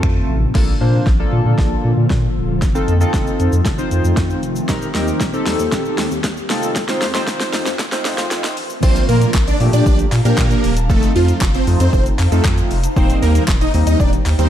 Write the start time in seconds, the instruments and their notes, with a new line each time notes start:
Already playing: ambient pad A2 C3 F3 C4 F4, analog polysynth A3 C4 F4 A4
0.03 sub bass F2, finger snap, kick
0.29 sub bass A1
0.55 sub bass A#1, ambient pad D3 F3 A#3 F4 A4, analog polysynth A#3 D4 F4 A4, kick, snare, crash
0.81 sub bass A#2, analog polysynth A#3 D4 F4 C5
1.07 sub bass A#1, kick, snare
1.19 analog polysynth A#3 D4 F4 A4
1.33 sub bass A#2
1.46 sub bass A#2
1.58 sub bass A#1, kick, snare
1.84 sub bass A#2
1.97 sub bass A#2
2.10 sub bass A#2, kick, snare
2.36 sub bass D#1
2.62 sub bass F1, ambient pad D#3 F3 A3 C4 F4, kick, snare, closed hi-hat, shaker
2.75 analog polysynth C4 D#4 F4 A4, shaker
2.88 sub bass F2, closed hi-hat, shaker
3.00 analog polysynth C4 D#4 F4 A4, shaker
3.14 sub bass F1, kick, snare, closed hi-hat, shaker
3.27 shaker
3.40 sub bass F2, closed hi-hat, shaker
3.52 sub bass F2, shaker
3.65 sub bass F1, kick, snare, closed hi-hat, shaker
3.78 analog polysynth C4 D#4 F4 C5, shaker
3.91 sub bass F2, closed hi-hat, shaker
4.04 sub bass F2, shaker
4.17 sub bass F2, kick, snare, closed hi-hat, shaker
4.30 shaker
4.43 sub bass F1, closed hi-hat, shaker
4.56 shaker
4.68 sub bass D#1, ambient pad G3 A#3 G4, analog polysynth C4 D#4 G4 A#4, kick, snare, closed hi-hat, shaker
4.82 shaker
4.94 sub bass D#2, analog polysynth C4 D#4 G4 A#4, snare, open hi-hat, shaker
5.08 shaker
5.21 sub bass D#1, kick, snare, closed hi-hat, shaker
5.33 analog polysynth C4 D#4 G4 A4, shaker
5.46 sub bass D#2, snare, open hi-hat, shaker
5.59 sub bass D#2, shaker
5.72 sub bass D#1, kick, snare, closed hi-hat, shaker
5.85 shaker
5.98 sub bass D#2, snare, open hi-hat, shaker
6.11 sub bass D#2, shaker
6.24 sub bass D#2, kick, snare, closed hi-hat, shaker
6.37 shaker
6.50 sub bass F1, ambient pad F3 A3 F4, analog polysynth C4 D#4 F4 A4, snare, open hi-hat, shaker
6.63 shaker
6.76 kick, snare, closed hi-hat, shaker
6.89 analog polysynth C4 D#4 F4 C5, snare, shaker
7.02 sub bass F2, snare, open hi-hat, shaker
7.14 analog polysynth C4 D#4 F4 C5, snare, shaker
7.27 sub bass F1, kick, snare, closed hi-hat, shaker
7.40 snare, shaker
7.53 sub bass F2, snare, open hi-hat, shaker
7.66 sub bass F2, snare, shaker
7.79 sub bass F1, kick, snare, closed hi-hat, shaker
7.92 analog polysynth C4 D#4 F4 C5, snare, shaker
8.05 sub bass F2, snare, open hi-hat, shaker
8.18 sub bass F2, snare, shaker
8.31 sub bass F2, snare, closed hi-hat, shaker
8.44 snare, shaker
8.57 sub bass A1, open hi-hat, shaker
8.70 shaker
8.83 sub bass A#1, analog polysynth F3 A3 A#3 D4 F4, supersaw synth C4 C5, ambient pad D4 F5 A5 A#5, kick, crash, shaker
8.96 closed hi-hat, shaker
9.09 sub bass A#2, supersaw synth A#3 A#4, open hi-hat, shaker
9.22 closed hi-hat, shaker
9.34 sub bass A#1, kick, snare, clap, shaker
9.48 supersaw synth D4 D5, closed hi-hat, shaker
9.60 sub bass A#2, analog polysynth F3 A3 A#3 D4 G4, open hi-hat, shaker
9.73 sub bass A#2, supersaw synth D4 D5, closed hi-hat, shaker
9.86 sub bass A#1, supersaw synth D4 D5, kick, shaker
9.99 closed hi-hat, shaker
10.12 sub bass A#2, clap, open hi-hat, shaker
10.25 sub bass A#2, analog polysynth F3 A#3 D4 G4, supersaw synth A#3 A#4, closed hi-hat, shaker
10.38 sub bass A#2, supersaw synth A#3 A#4, kick, snare, clap, shaker
10.51 closed hi-hat, shaker
10.64 sub bass D#1, open hi-hat, shaker
10.77 closed hi-hat, shaker
10.89 sub bass F1, analog polysynth F3 A3 C4 D#4 F4, supersaw synth A3 A4, ambient pad D#4 C5, kick, shaker
11.03 closed hi-hat, shaker
11.15 sub bass F2, supersaw synth F3 F4, open hi-hat, shaker
11.28 closed hi-hat, shaker
11.41 sub bass F1, kick, snare, clap, shaker
11.54 supersaw synth C4 C5, closed hi-hat, shaker
11.67 sub bass F2, analog polysynth F3 A3 C4 D#4 F4, open hi-hat, shaker
11.80 sub bass F2, supersaw synth C4 C5, closed hi-hat, shaker
11.93 sub bass F1, supersaw synth C4 C5, kick, shaker
12.06 closed hi-hat, shaker
12.19 sub bass F2, clap, open hi-hat, shaker
12.32 sub bass F2, analog polysynth F3 A3 C4 D#4 F4, supersaw synth A3 A4, closed hi-hat, shaker
12.45 sub bass F2, kick, snare, clap, shaker
12.58 closed hi-hat, shaker
12.71 sub bass F1, open hi-hat, shaker
12.84 closed hi-hat, shaker
12.96 sub bass D#1, analog polysynth D#3 G3 A#3 C4 D#4, supersaw synth C4 C5, ambient pad G5 A#5, kick, shaker
13.10 closed hi-hat, shaker
13.22 sub bass D#2, supersaw synth A#3 A#4, open hi-hat, shaker
13.35 closed hi-hat, shaker
13.48 sub bass D#1, kick, snare, clap, shaker
13.61 supersaw synth D#4 D#5, closed hi-hat, shaker
13.74 sub bass D#2, analog polysynth D#3 G3 A#3 C4 D#4, open hi-hat, shaker
13.87 sub bass D#2, supersaw synth D#4 D#5, closed hi-hat, shaker
14.00 sub bass D#1, supersaw synth D4 D5, kick, shaker
14.13 closed hi-hat, shaker
14.26 sub bass D#2, clap, open hi-hat, shaker
14.38 sub bass D#2, analog polysynth D#3 G3 A#3 C4 D#4, supersaw synth C4 C5, closed hi-hat, shaker